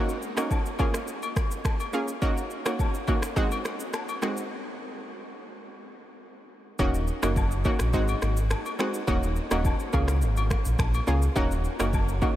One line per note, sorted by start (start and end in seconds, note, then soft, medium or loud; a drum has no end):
0.00 0.33 A#3 medium
0.00 0.33 C#4 medium
0.00 0.33 D#4 medium
0.00 0.33 F#4 loud
0.09 shaker medium
0.22 shaker soft
0.37 0.58 A#3 medium
0.37 0.58 C#4 medium
0.37 0.58 D#4 medium
0.37 0.58 F#4 medium
0.37 finger snap medium
0.37 cross-stick loud
0.37 high agogo medium
0.37 shaker medium
0.51 kick medium
0.51 low woodblock medium
0.51 shaker medium
0.66 shaker medium
0.79 1.01 A#3 medium
0.79 1.01 C#4 medium
0.79 1.01 F4 medium
0.79 1.01 G#4 medium
0.79 kick medium
0.79 high agogo medium
0.79 shaker soft
0.94 finger snap medium
0.94 cross-stick medium
0.94 shaker loud
1.08 shaker medium
1.23 high agogo medium
1.23 shaker medium
1.36 finger snap medium
1.36 kick medium
1.36 cross-stick medium
1.36 shaker medium
1.51 shaker medium
1.65 finger snap medium
1.65 kick medium
1.65 cross-stick medium
1.65 low woodblock medium
1.65 shaker medium
1.80 high agogo medium
1.80 shaker medium
1.93 2.15 A#3 medium
1.93 2.15 C#4 medium
1.93 2.15 F4 medium
1.93 2.15 G#4 medium
1.93 shaker medium
2.08 shaker medium
2.22 2.62 A#3 loud
2.22 2.62 C#4 medium
2.22 2.62 D#4 medium
2.22 2.62 F#4 loud
2.22 kick loud
2.22 high agogo medium
2.22 shaker medium
2.37 shaker medium
2.51 shaker soft
2.65 2.87 A#3 medium
2.65 2.87 C#4 medium
2.65 2.87 D#4 medium
2.65 2.87 F#4 medium
2.65 finger snap medium
2.65 cross-stick loud
2.65 high agogo medium
2.65 shaker medium
2.79 kick medium
2.79 low woodblock medium
2.79 shaker medium
2.94 shaker medium
3.07 3.29 A#3 medium
3.07 3.29 C#4 medium
3.07 3.30 D#4 medium
3.07 3.30 F#4 medium
3.07 kick medium
3.07 high agogo medium
3.07 shaker soft
3.22 finger snap medium
3.22 cross-stick medium
3.22 shaker medium
3.36 4.15 G#3 medium
3.36 4.15 C4 medium
3.36 4.16 D#4 medium
3.36 4.16 F#4 loud
3.36 kick loud
3.36 shaker medium
3.51 high agogo medium
3.51 shaker medium
3.65 finger snap medium
3.65 cross-stick medium
3.65 shaker medium
3.80 shaker medium
3.93 finger snap medium
3.93 cross-stick medium
3.93 low woodblock medium
3.93 shaker medium
4.09 high agogo medium
4.09 shaker medium
4.22 4.44 G#3 medium
4.22 4.44 C4 medium
4.22 4.44 D#4 medium
4.22 4.44 F#4 medium
4.22 finger snap medium
4.22 cross-stick loud
4.22 shaker medium
4.37 shaker medium
6.79 7.11 D#1 loud
6.79 7.19 A#3 medium
6.79 7.19 C#4 medium
6.79 7.19 D#4 medium
6.79 7.19 F#4 loud
6.79 kick loud
6.79 high agogo medium
6.79 shaker medium
6.94 shaker medium
7.07 shaker soft
7.22 7.64 F#1 medium
7.22 7.44 A#3 medium
7.22 7.44 C#4 medium
7.22 7.44 D#4 medium
7.22 7.44 F#4 medium
7.22 finger snap medium
7.22 cross-stick loud
7.22 high agogo medium
7.22 shaker loud
7.36 kick medium
7.36 low woodblock medium
7.36 shaker medium
7.51 shaker medium
7.64 7.87 A#3 medium
7.64 7.87 C#4 medium
7.64 7.87 D#4 medium
7.64 7.87 F#4 medium
7.64 kick medium
7.64 high agogo medium
7.64 shaker soft
7.79 7.95 A#1 medium
7.79 finger snap medium
7.79 cross-stick medium
7.79 shaker medium
7.93 8.14 G#1 loud
7.93 8.73 G#3 medium
7.93 8.73 C4 medium
7.93 8.73 D#4 medium
7.93 8.73 F#4 loud
7.93 kick loud
7.93 shaker medium
8.08 high agogo medium
8.08 shaker medium
8.22 8.54 G#1 loud
8.22 finger snap medium
8.22 cross-stick medium
8.22 shaker medium
8.37 shaker medium
8.50 finger snap medium
8.50 cross-stick loud
8.50 low woodblock medium
8.50 shaker medium
8.66 high agogo medium
8.66 shaker medium
8.79 9.01 G#3 medium
8.79 9.01 C4 medium
8.79 9.01 D#4 medium
8.79 9.01 F#4 medium
8.79 finger snap medium
8.79 cross-stick medium
8.79 shaker medium
8.94 shaker medium
9.07 9.39 D#1 loud
9.07 9.47 A#3 medium
9.07 9.48 C#4 medium
9.07 9.48 D#4 medium
9.07 9.48 F#4 loud
9.07 kick loud
9.07 high agogo medium
9.07 shaker medium
9.23 shaker medium
9.36 shaker soft
9.51 9.72 D#1 medium
9.51 9.72 A#3 medium
9.51 9.72 C#4 medium
9.51 9.72 D#4 medium
9.51 9.73 F#4 medium
9.51 finger snap medium
9.51 cross-stick loud
9.51 high agogo medium
9.51 shaker medium
9.65 kick medium
9.65 low woodblock medium
9.65 shaker medium
9.80 shaker medium
9.93 10.24 C#2 loud
9.93 10.15 A#3 medium
9.93 10.15 C#4 medium
9.93 10.15 F4 medium
9.93 10.15 G#4 medium
9.93 kick medium
9.93 high agogo medium
9.93 shaker soft
10.08 finger snap medium
10.08 cross-stick medium
10.08 shaker medium
10.22 10.54 G#1 loud
10.22 shaker medium
10.37 high agogo medium
10.37 shaker medium
10.50 finger snap medium
10.50 kick medium
10.50 cross-stick medium
10.50 shaker medium
10.65 10.75 A#1 medium
10.65 shaker medium
10.79 11.00 A#1 medium
10.79 finger snap medium
10.79 kick loud
10.79 cross-stick medium
10.79 low woodblock medium
10.79 shaker medium
10.94 high agogo medium
10.94 shaker medium
11.07 11.28 C#2 medium
11.07 11.29 A#3 medium
11.07 11.29 C#4 medium
11.07 11.29 F4 medium
11.07 11.29 G#4 medium
11.07 shaker medium
11.22 shaker medium
11.36 11.68 D#1 loud
11.36 11.76 A#3 loud
11.36 11.76 C#4 medium
11.36 11.76 D#4 medium
11.36 11.76 F#4 loud
11.36 kick loud
11.36 high agogo medium
11.36 shaker medium
11.51 shaker medium
11.64 shaker soft
11.79 12.21 F#1 medium
11.79 12.01 A#3 medium
11.79 12.01 C#4 medium
11.79 12.01 D#4 medium
11.79 12.01 F#4 medium
11.79 finger snap medium
11.79 cross-stick loud
11.79 high agogo medium
11.79 shaker loud
11.93 kick medium
11.93 low woodblock medium
11.93 shaker medium
12.08 shaker medium
12.22 12.36 A#3 medium
12.22 12.36 C#4 medium
12.22 12.36 D#4 medium
12.22 12.36 F#4 medium
12.22 kick medium
12.22 high agogo medium
12.22 shaker soft